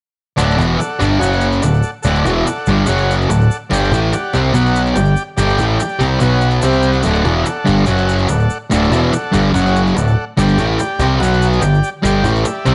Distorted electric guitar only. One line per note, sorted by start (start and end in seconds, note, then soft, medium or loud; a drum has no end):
0.37 0.57 D2 medium
0.37 0.57 A2 medium
0.37 0.58 D3 loud
0.57 0.78 E2 medium
0.57 0.78 B2 medium
0.57 0.79 E3 loud
0.79 muted distorted electric guitar stroke medium
0.99 1.19 G2 loud
0.99 1.20 D3 medium
0.99 1.21 G3 medium
1.19 1.61 F#2 medium
1.19 1.62 C#3 loud
1.19 1.62 F#3 loud
1.63 1.80 D2 medium
1.63 1.80 A2 medium
2.05 2.25 D2 loud
2.05 2.25 A2 medium
2.05 2.26 D3 loud
2.26 2.45 E2 medium
2.26 2.46 B2 loud
2.26 2.46 E3 loud
2.46 muted distorted electric guitar stroke medium
2.68 2.86 G2 loud
2.68 2.87 D3 loud
2.68 2.88 G3 loud
2.86 3.28 F#2 loud
2.86 3.28 C#3 loud
2.86 3.29 F#3 loud
3.29 3.46 D2 medium
3.29 3.46 A2 medium
3.70 3.91 G2 loud
3.70 3.91 D3 loud
3.70 3.92 G3 loud
3.93 4.12 A2 medium
3.93 4.13 E3 loud
3.93 4.13 A3 loud
4.13 muted distorted electric guitar stroke medium
4.33 4.53 C3 medium
4.33 4.54 G3 loud
4.33 4.54 C4 loud
4.53 4.95 B2 loud
4.53 4.95 F#3 loud
4.53 4.96 B3 loud
4.96 5.13 G2 medium
4.96 5.13 D3 medium
5.38 5.58 G2 loud
5.38 5.58 D3 loud
5.38 5.58 G3 loud
5.59 5.79 A2 medium
5.59 5.80 E3 medium
5.59 5.80 A3 loud
5.82 muted distorted electric guitar stroke medium
5.99 6.20 C3 medium
5.99 6.20 G3 loud
5.99 6.21 C4 loud
6.20 6.61 B2 loud
6.20 6.62 F#3 loud
6.20 6.62 B3 loud
6.63 7.03 C3 medium
6.63 7.04 G3 medium
6.63 7.04 C4 loud
7.04 7.24 D2 loud
7.04 7.24 A2 loud
7.04 7.25 D3 loud
7.25 7.44 E2 medium
7.25 7.45 B2 medium
7.25 7.46 E3 medium
7.45 muted distorted electric guitar stroke medium
7.65 7.85 G2 medium
7.65 7.86 D3 medium
7.65 7.87 G3 loud
7.86 8.27 F#2 medium
7.86 8.28 C#3 loud
7.86 8.28 F#3 loud
8.28 8.45 D2 medium
8.28 8.46 A2 medium
8.70 8.90 D2 medium
8.70 8.91 A2 loud
8.70 8.92 D3 loud
8.91 9.11 E2 medium
8.91 9.12 B2 medium
8.91 9.12 E3 loud
9.12 muted distorted electric guitar stroke medium
9.32 9.51 G2 medium
9.32 9.53 D3 medium
9.32 9.53 G3 medium
9.52 9.94 F#2 loud
9.52 9.94 C#3 loud
9.52 9.94 F#3 loud
9.96 10.12 D2 medium
9.96 10.13 A2 medium
10.37 10.57 G2 loud
10.37 10.57 D3 loud
10.37 10.58 G3 loud
10.59 10.78 A2 medium
10.59 10.79 E3 loud
10.59 10.79 A3 loud
10.79 muted distorted electric guitar stroke medium
11.00 11.20 C3 loud
11.00 11.20 G3 loud
11.00 11.21 C4 loud
11.21 11.62 B2 loud
11.21 11.62 F#3 loud
11.21 11.63 B3 loud
11.62 11.79 G2 medium
11.62 11.79 D3 medium
12.03 12.23 G2 medium
12.03 12.24 D3 loud
12.03 12.24 G3 loud
12.24 12.44 A2 medium
12.24 12.45 E3 medium
12.24 12.46 A3 loud
12.45 muted distorted electric guitar stroke medium
12.65 12.75 C3 medium
12.65 12.75 G3 loud
12.65 12.75 C4 loud